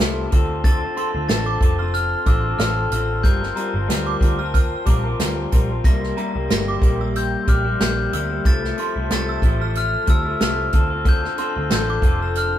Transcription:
Already playing: G4 A4 A5 C6
0.00 C2 C3 F3 A3 E4, snare, closed hi-hat
0.30 D2 D3 C4 D4 F4 A4, kick, closed hi-hat
0.64 D3 C4 F4 A4 A6, kick, closed hi-hat
0.81 C4 F4 A4
0.95 D3 C4 F4 A4 C6, closed hi-hat
1.13 D2 C4 F4 A4
1.28 A1 D3 C4 F4 A4 A6, snare, closed hi-hat
1.46 D6
1.60 F1 D3 C4 F4 A4, kick, closed hi-hat
1.78 C4 F4 A4 F6
1.94 F6, closed hi-hat
2.25 A1 D3 C4 F4 A4 D6 E6, kick, closed hi-hat
2.44 C4 F4 A4
2.57 A1 D3 C4 F4 A4 F6, snare, closed hi-hat
2.91 A1 D3 C4 F4 A4 F6, closed hi-hat
3.22 G1 G3 C4 F4 A#4 A5 G6, kick, closed hi-hat
3.41 F4 A#4, snare
3.45 C4
3.55 G3 C4 F4 A#4 A#5, closed hi-hat
3.73 G1 C4 F4 A#4
3.88 D2 G3 C4 F4 A#4, snare, closed hi-hat
4.07 D6
4.20 D2 G3 C4 F4, kick, closed hi-hat
4.24 A#4
4.38 C4 F4 A#4 F6
4.54 F6, kick, closed hi-hat
4.85 A#1 G3 C4 F4 D6, kick, closed hi-hat
4.89 A#4
5.04 C4 F4 A#4
5.19 D2 G3 C4 F4 A#4, snare, closed hi-hat
5.51 A#1 G3 C4 F4 A#4, kick, closed hi-hat
5.70 C4 F4 A#4
5.84 C2 C3 G3 A#3 E4 G4 G5 A#6, kick, closed hi-hat
6.01 A#3 E4, snare
6.06 G3
6.16 C3 G3 A#3 E4 A#5, closed hi-hat
6.33 C2 A#3 E4
6.38 G3
6.49 G1 C3 G3 A#3 E4 A#6, snare, closed hi-hat
6.68 D6
6.81 A#1 C3 G3 A#3, kick, closed hi-hat
6.85 E4
6.99 A#3 E4 E6
7.03 G3
7.16 E6 G6, closed hi-hat
7.46 A#1 C3 G3 A#3 E4 D6 F6, kick, closed hi-hat
7.64 G3 A#3 E4
7.79 A#1 C3 G3 A#3 E4 G6, snare, closed hi-hat
8.12 D2 C3 G3 A#3 E4 E6, closed hi-hat
8.30 A#3 E4
8.34 G3
8.45 C2 C3 F3 A3 E4 A4 A5 C6 A6, kick, closed hi-hat
8.63 F3 A3 E4, snare
8.77 C3 F3 A3 E4 C6, closed hi-hat
8.96 C2 F3 A3 E4
9.10 C2 C3 F3 A3 E4 A6, snare, closed hi-hat
9.29 E6
9.42 A1 C3 F3 A3 E4, kick, closed hi-hat
9.60 A3 E4 F6
9.64 F3
9.75 F6, closed hi-hat
10.06 D2 C3 F3 A3 E6, kick, closed hi-hat
10.11 E4
10.25 A3 E4
10.29 F3
10.40 C2 C3 F3 A3 E4 F6, snare, closed hi-hat
10.72 D2 D3 C4 D4 F4 A4 C6, kick, closed hi-hat
10.90 C4 F4 A4
11.04 D3 C4 F4 A4, kick, closed hi-hat
11.09 G6
11.22 C4 F4 A4, snare
11.37 D3 C4 F4 A4 C6, closed hi-hat
11.55 D2 C4 F4 A4
11.70 A1 D3 C4 F4 A4 G6, snare, closed hi-hat
11.90 D6
12.02 F1 D3 C4 F4, kick, closed hi-hat
12.06 A4
12.21 C4 F4 A4 F6
12.35 F6, closed hi-hat

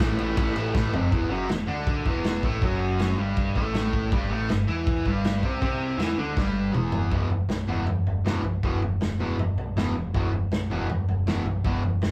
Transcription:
0.00 A1 A2 E3 A3, snare
0.18 A1 A2 E3 A3, ride
0.37 A1 A2 E3 A3, kick, ride
0.56 A1 A2 E3 A3, ride
0.74 A1 A2 E3 A3, kick, snare
0.93 F1 F2 C3 F3, floor tom
1.12 E1 E2 E3, kick, crash
1.30 F#1 F#2 F#3
1.49 E1 E2, snare, crash
1.67 D2 D3 D4
1.87 kick, crash
2.05 E1 E2 E3, kick
2.24 snare, crash
2.42 A1 A2 A3, kick
2.62 F#1 F#2 F#3, kick, crash
2.99 snare, crash
3.17 G1 G2 G3
3.37 kick, crash
3.55 A1 A2 A3, kick
3.74 snare, crash
3.93 kick
4.11 G1 G2 G3, kick, crash
4.30 A1 A2 A3
4.49 G1 G2, snare, crash
4.67 E2 E3 E4
4.87 kick, crash
5.06 G1 G2 G3, kick
5.24 snare, crash
5.43 C2 C3 C4, kick
5.62 C2 C3 C4, kick, crash
5.98 E2 E3 E4, snare, crash
6.18 D2 D3 D4
6.37 G1 G2 G3, kick, snare
6.73 E1 E2 E3, mid tom
6.92 floor tom
7.11 E1 E2 B2 E3, kick, floor tom
7.30 floor tom
7.49 B1, snare, floor tom
7.67 E1 E2 B2 E3, floor tom
7.86 E2, floor tom
8.05 E1, floor tom
8.24 E1 E2 B2 E3, snare, floor tom
8.43 B1, floor tom
8.63 E1 E2 B2 E3, kick, floor tom
8.81 E1, floor tom
9.00 E1, snare, floor tom
9.18 E1 E2 B2 E3, floor tom
9.39 E1, floor tom
9.57 B1, floor tom
9.75 E1 E2 B2 E3, snare, floor tom
9.95 E1, floor tom
10.14 E1 E2 B2 E3, kick, floor tom
10.33 floor tom
10.52 B1, snare, floor tom
10.70 E1 E2 B2 E3, floor tom
10.89 E2, floor tom
11.07 E1, floor tom
11.26 E1 E2 B2 E3, snare, floor tom
11.44 B1, floor tom
11.64 E1 E2 B2 E3, kick, floor tom
11.82 E1, floor tom
12.01 E1, snare, floor tom

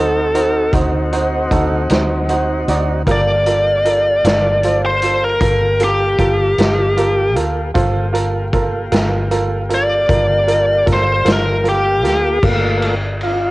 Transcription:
Already playing: D2 C4 D#4 F#4 A4 C5
0.35 D#4 F#4 C5, closed hi-hat
0.73 D2 D#4 F#4 C5, kick, closed hi-hat
1.12 D#4 F#4 C5, closed hi-hat
1.51 D2 D#4 F#4 A4, kick, closed hi-hat
1.89 D2 D#4 F#4 C5, snare, closed hi-hat
2.29 D#4 F#4 C5 F#5, closed hi-hat
2.68 D2 D#4 F#4 D5 A#5, closed hi-hat
3.06 G1 A#3 F4 G4 A4 A#4, kick, closed hi-hat
3.12 D5
3.46 F4 A4 A#4, closed hi-hat
3.85 F4 A4 A#4, closed hi-hat
4.24 G1 F4 A4 A#4, snare, closed hi-hat
4.63 F4 A4 C5, closed hi-hat
4.86 C5
5.02 F4 A4 C5, closed hi-hat
5.24 A#4
5.41 G1 F4 A4 A#4, kick, closed hi-hat
5.80 F4 A4 A#4, closed hi-hat
5.84 G4
6.19 G1 F4 A4 A#4, kick, closed hi-hat
6.58 G1 F4 A4 A#4, snare, closed hi-hat
6.97 F4 A4 A#4, closed hi-hat
7.35 D2 F4 A4 A#4, closed hi-hat
7.74 G1 A#3 F4 G4 A4 C5, kick, closed hi-hat
8.13 F4 A4 A#4, closed hi-hat
8.53 F4 A4 A#4, kick, closed hi-hat
8.92 G1 F4 A4 A#4, snare, closed hi-hat
9.31 F4 A4 A#4, closed hi-hat
9.69 F4 A4 A#4, closed hi-hat
9.75 D5
10.09 G1 F4 A4 A#4, kick, closed hi-hat
10.47 F4 A4 A#4, closed hi-hat
10.86 G1 F4 A4 A#4, kick, snare, closed hi-hat
10.93 C5
11.25 G1 F4 A4 A#4, snare, closed hi-hat
11.33 A#4
11.64 F4 A4 A#4, closed hi-hat
11.69 G4
12.03 D2 F4 A4 A#4, snare, closed hi-hat
12.43 G1 A3 A#3 F4, kick, crash
12.82 ride
13.21 F4, ride

